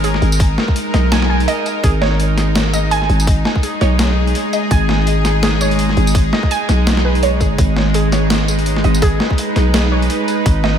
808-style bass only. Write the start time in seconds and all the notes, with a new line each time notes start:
Already playing: G#1
0.22 G#1
0.94 B1
1.84 G#1
3.09 G#1
3.81 B1
4.71 G#1
5.97 G#1
6.69 B1
7.41 G#1
7.51 F#1
7.59 G#1
8.85 G#1
9.56 B1
10.46 G#1